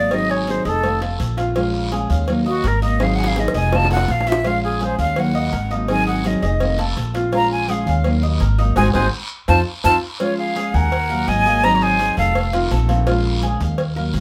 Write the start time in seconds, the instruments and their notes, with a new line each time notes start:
Already playing: upright bass G#1, nylon-string guitar F#3 A#3 F4, cuban tres D#4, flute D5
0.11 nylon-string guitar D#3 F#3 C4 D#4 G#4, flute D#5, cowbell, long guiro
0.30 cuban tres G#4, flute C#5
0.47 nylon-string guitar D#3 F#3 C4 D#4 G#4, flute C5, cowbell, short guiro
0.65 upright bass F1, nylon-string guitar C4 D#4 G#4, flute A4, cuban tres D#5, cowbell, short guiro
0.83 nylon-string guitar C3 D#3 A3 C4 F4, cowbell, long guiro
1.01 nylon-string guitar A3 C4 F4, cuban tres A4, cowbell
1.19 upright bass A#1, muted nylon-string guitar stroke, cowbell, short guiro
1.37 nylon-string guitar A3 C4 F4, cuban tres F4, cowbell, short guiro
1.55 nylon-string guitar F3 G#3 C#4 F4, cuban tres F4, cowbell, long guiro
1.91 nylon-string guitar F3 G#3 C#4 F4, cuban tres G#4, cowbell, short guiro
2.10 upright bass D#2, nylon-string guitar G#3 C#4 F4, cuban tres F5, short guiro
2.28 nylon-string guitar D#3 F#3 A#3 F4, cowbell, long guiro
2.46 nylon-string guitar F#3 A#3 F4, flute F#4, cuban tres D#5
2.64 upright bass G#1, cuban tres A#4, flute A#4, muted nylon-string guitar stroke, cowbell, short guiro
2.82 nylon-string guitar F#3 A#3 F4, cuban tres D#4, flute D#5, short guiro
3.00 nylon-string guitar D#3 F#3 C4 D#4 G#4, flute F5, cowbell, high bongo, long guiro
3.15 cuban tres G#4, flute F#5
3.24 flute F5, low bongo
3.36 nylon-string guitar D#3 F#3 C4 D#4 G#4, flute D#5, cowbell, high bongo, short guiro
3.48 high bongo
3.54 upright bass F1, nylon-string guitar C4 D#4 G#4, cuban tres D#5, flute G#5, cowbell, short guiro
3.72 nylon-string guitar C3 D#3 A3 C4 F4, flute A5, cowbell, low bongo, long guiro
3.85 low bongo
3.90 nylon-string guitar A3 C4 F4, cuban tres A4, flute F#5, cowbell
3.96 low bongo
4.08 upright bass A#1, flute F5, muted nylon-string guitar stroke, cowbell, low bongo, short guiro
4.21 low bongo
4.26 nylon-string guitar A3 C4 F4, cuban tres F4, flute E5, cowbell, short guiro
4.32 low bongo
4.44 nylon-string guitar F3 G#3 C#4 F4, cuban tres F4, flute F5, cowbell, long guiro
4.64 flute G#4
4.80 nylon-string guitar F3 G#3 C#4 F4, cuban tres G#4, flute C5, cowbell, short guiro
4.98 upright bass D#2, nylon-string guitar G#3 C#4 F4, cuban tres F5, flute F5, short guiro
5.16 nylon-string guitar D#3 F#3 A#3 F4, flute F#5, cowbell, long guiro
5.34 nylon-string guitar F#3 A#3 F4, cuban tres D#5
5.52 upright bass G#1, cuban tres A#4, muted nylon-string guitar stroke, cowbell, short guiro
5.70 nylon-string guitar F#3 A#3 F4, cuban tres D#4, short guiro
5.88 nylon-string guitar D#3 F#3 C4 D#4 G#4, flute G#5, cowbell, long guiro
6.07 cuban tres G#4, flute F#5
6.24 nylon-string guitar D#3 F#3 C4 D#4 G#4, flute D#5, cowbell, short guiro
6.42 upright bass F1, nylon-string guitar C4 D#4 G#4, cuban tres D#5, cowbell, short guiro
6.60 nylon-string guitar C3 D#3 A3 C4 F4, cowbell, long guiro
6.78 nylon-string guitar A3 C4 F4, cuban tres A4, cowbell
6.96 upright bass A#1, muted nylon-string guitar stroke, cowbell, short guiro
7.14 nylon-string guitar A3 C4 F4, cuban tres F4, cowbell, short guiro
7.32 nylon-string guitar F3 G#3 C#4 F4, cuban tres F4, flute A#5, cowbell, long guiro
7.52 flute G#5
7.68 nylon-string guitar F3 G#3 C#4 F4, cuban tres G#4, cowbell, short guiro
7.72 flute F5
7.86 upright bass D#2, nylon-string guitar G#3 C#4 F4, cuban tres F5, short guiro
8.04 nylon-string guitar D#3 F#3 A#3 F4, cowbell, long guiro
8.22 nylon-string guitar F#3 A#3 F4, cuban tres D#5
8.40 upright bass G#1, cuban tres A#4, muted nylon-string guitar stroke, cowbell, short guiro
8.58 nylon-string guitar F#3 A#3 F4, cuban tres D#4, short guiro
8.76 upright bass G#1, nylon-string guitar G#3 C4 D#4, cuban tres F#4 G#4 C5, flute G#5, cowbell, long guiro
8.94 upright bass G#1, nylon-string guitar G#3 C4 D#4, cuban tres F#4 G#4 C5, flute G#5, cowbell, long guiro
9.48 upright bass F2, nylon-string guitar C4 D#4 F4, cuban tres F4 A4 C5, flute A5, cowbell, long guiro
9.84 upright bass F2, nylon-string guitar C4 D#4 F4, cuban tres F4 A4 C5, flute A5, cowbell, long guiro
10.20 nylon-string guitar F3 G#3 C#4 F4, cuban tres F4, trumpet F4, flute C#5, cowbell, long guiro
10.38 trumpet G#4, flute F5
10.56 nylon-string guitar F3 G#3 C#4 F4, cuban tres G#4, cowbell, short guiro
10.74 upright bass D#2, trumpet A#4, flute F#5, cuban tres G#5, short guiro
10.92 muted nylon-string guitar stroke, cowbell, long guiro
11.10 nylon-string guitar F#3 A#3 F4, cuban tres A#4
11.28 upright bass G#1, nylon-string guitar D#3 F#3 A#3 F4, trumpet D#5, flute G#5, cowbell, short guiro
11.46 nylon-string guitar F#3 A#3 F4, cuban tres G#4, short guiro
11.64 nylon-string guitar D#3 F#3 C4 D#4 G#4, trumpet D#5, flute A#5, cowbell, long guiro
11.75 trumpet C#5, flute A#5
11.82 cuban tres D#4, trumpet C5, flute G#5
11.99 nylon-string guitar F#3 C4 D#4 G#4, cowbell, short guiro
12.17 upright bass F1, trumpet A4, flute F5, cowbell, short guiro
12.35 muted nylon-string guitar stroke, cowbell, long guiro
12.53 nylon-string guitar D#3 A3 C4 F4, cuban tres F4, cowbell
12.71 upright bass A#1, nylon-string guitar D#3 A3 C4 F4, cuban tres A4, cowbell, short guiro
12.89 nylon-string guitar D#3 A3 C4 F4, cowbell, short guiro
13.07 nylon-string guitar F3 G#3 C#4 F4, cuban tres F4, cowbell, long guiro
13.43 nylon-string guitar F3 G#3 C#4 F4, cuban tres G#4, cowbell, short guiro
13.60 upright bass D#2, cuban tres F5, short guiro
13.78 muted nylon-string guitar stroke, cowbell, long guiro
13.96 nylon-string guitar F#3 A#3 F4, cuban tres A#4
14.14 upright bass G#1, nylon-string guitar D#3 F#3 A#3 F4, cowbell, short guiro